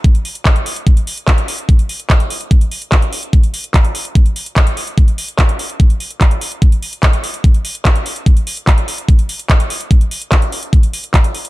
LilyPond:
\new DrumStaff \with { instrumentName = "Drums" } \drummode { \time 4/4 \tempo 4 = 146 <hh bd>16 hh16 hho16 hh16 <hc hh bd>16 hh16 hho16 hh16 <hh bd>16 hh16 hho16 hh16 <hc hh bd>16 hh16 hho16 hh16 | <hh bd>16 hh16 hho16 hh16 <hc hh bd>16 hh16 hho16 hh16 <hh bd>16 hh16 hho16 hh16 <hc hh bd>16 hh16 hho16 hh16 | <hh bd>16 hh16 hho16 hh16 <hc hh bd>16 hh16 hho16 hh16 <hh bd>16 hh16 hho16 hh16 <hc hh bd>16 hh16 hho16 hh16 | <hh bd>16 hh16 hho16 hh16 <hc hh bd>16 hh16 hho16 hh16 <hh bd>16 hh16 hho16 hh16 <hc hh bd>16 hh16 hho16 hh16 |
<hh bd>16 hh16 hho16 hh16 <hc hh bd>16 hh16 hho16 hh16 <hh bd>16 hh16 hho16 hh16 <hc hh bd>16 hh16 hho16 hh16 | <hh bd>16 hh16 hho16 hh16 <hc hh bd>16 hh16 hho16 hh16 <hh bd>16 hh16 hho16 hh16 <hc hh bd>16 hh16 hho16 hh16 | <hh bd>16 hh16 hho16 hh16 <hc hh bd>16 hh16 hho16 hh16 <hh bd>16 hh16 hho16 hh16 <hc hh bd>16 hh16 hho16 hh16 | }